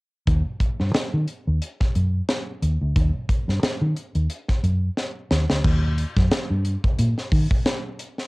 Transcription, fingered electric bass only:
0.27 D#2
0.80 G2
0.95 muted fingered electric bass stroke
1.14 D#3
1.47 D#2
1.96 F#2
2.62 D#2
2.81 D2
2.96 D#2
3.48 G2
3.63 muted fingered electric bass stroke
3.81 D#3
4.15 D#2
4.64 F#2
5.31 D#2
5.50 D2
5.65 D#2
6.17 F#2
6.32 muted fingered electric bass stroke
6.50 G2
6.99 A#2
7.32 D#3

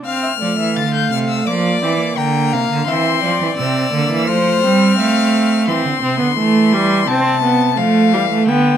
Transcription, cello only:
0.41 F3
0.59 E3
0.77 D3
1.12 C3
1.48 F3
1.83 E3
2.18 D3
2.53 C3
2.70 D3
2.88 E3
3.23 F3
3.41 E3
3.58 C3
3.93 D3
4.10 E3
4.28 F3
4.63 G3
4.98 A3
5.68 E3
5.85 D3
6.03 C3
6.20 D3
6.37 E3
7.08 C3
7.78 F3
8.13 E3
8.48 D3

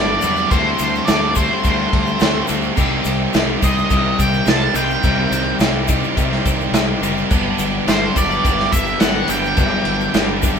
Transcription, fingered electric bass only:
Already playing: G1
0.23 E2
0.52 D2
0.80 D2
1.09 D2
1.65 D2
1.93 D2
2.21 D2
2.50 D2
2.78 C2
3.05 C2
3.35 C2
3.62 C2
3.91 C2
4.19 C2
4.46 C2
4.74 C2
5.05 C2
5.31 C2
5.59 C2
6.17 C2
6.46 C2
6.72 C2
7.01 F#1
7.32 G1
7.59 G1
7.87 G1
8.17 G1
8.45 G1
8.73 G1
9.01 G1
9.29 G1
9.58 G1
9.86 G1
10.15 G1

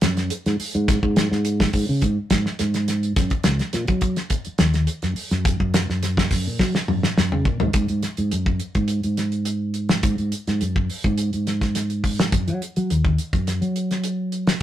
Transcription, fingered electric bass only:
0.03 F#2
0.46 G#2
0.59 muted fingered electric bass stroke
0.75 G#2
1.03 G#2
1.31 G#2
1.74 G#2
1.89 C#3
2.02 G#2
2.31 G#2
2.60 G#2
3.17 F#2
3.46 C#2
3.74 A#2
3.88 F#3
4.47 muted fingered electric bass stroke
4.60 D#2
5.03 F#2
5.17 muted fingered electric bass stroke
5.31 F#2
5.60 F#2
5.89 F#2
6.31 F#2
6.47 A#2
6.60 F#3
6.89 F#2
7.18 F#2
7.33 C#3
7.45 A#2
7.60 G#2
7.74 G#2
7.90 G#2
8.18 G#2
8.32 F#2
8.75 G#2
9.04 G#2
10.04 G#2
10.19 G#2
10.48 G#2
10.62 F#2
11.04 G#2
11.34 G#2
12.32 F#2
12.47 F#3
12.77 F#3
12.91 D#2
13.33 F#2
13.61 F#3

